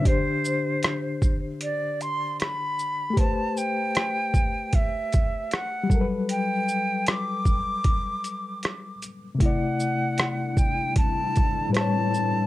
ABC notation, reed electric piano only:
X:1
M:4/4
L:1/8
Q:"Swing 16ths" 1/4=77
K:Ador
V:1 name="Reed electric piano"
[D,DGc]8 | [A,GBc]6- [A,GBc] [F,G,A_B=B]- | [F,G,A_B=B]6- [F,G,A_B=B] z | [C,A,Ed]6 [A,,G,Bc^c]2 |]